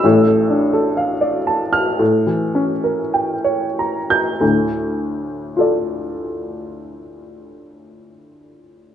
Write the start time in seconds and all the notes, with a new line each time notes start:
0.04 A1 A2
0.27 A3
0.50 D4
0.73 A4
0.97 F5
1.21 D5
1.47 A5
1.73 F6
1.99 A2
2.27 E3
2.55 C#4
2.84 A#4
3.14 G5
3.44 C#5
3.79 A#5
4.10 G6
4.40 D2 A2
5.56 F4 A4
5.61 D5